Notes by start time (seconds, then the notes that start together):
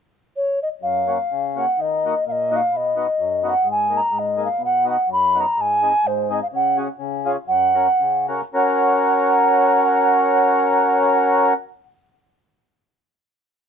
0.36 C#5
0.63 D#5
0.82 F#2 F5
1.07 A#3 C#4 F#4
1.31 C#3
1.56 A#3 C#4 F#4 F#5
1.78 D#3 D#5
2.05 A#3 D#4 F#4
2.26 A#2 F5
2.32 D#5
2.51 A#3 D#4 F#4
2.56 F5
2.71 B2
2.77 D#5
2.96 B3 D#4 F#4
3.19 F#2
3.43 B3 D#4 F#4
3.49 F#5
3.64 G#2
3.71 G#5
3.89 A#3 D#4 G#4
3.97 A#5
4.11 G#2
4.19 D#5
4.37 A#3 D#4 G#4
4.45 F5
4.58 B2
4.65 F#5
4.85 B3 D#4 F#4
4.90 F#5
5.08 F#2
5.12 B5
5.35 B3 D#4 F#4
5.41 A#5
5.56 G#2
5.61 G#5
5.82 C4 D#4 G#4
6.04 G#2 C5
6.30 C4 D#4 G#4 D#5
6.43 F5
6.53 C#3 F#5
6.77 C#4 F#4 G#4
6.99 C#3
7.26 C#4 F4 G#4 F5
7.48 F#2 F#5
7.75 C#4 F#4 A#4
8.00 C#3
8.29 C#4 F#4 A#4
8.54 C#4 F#4 A#4 F#5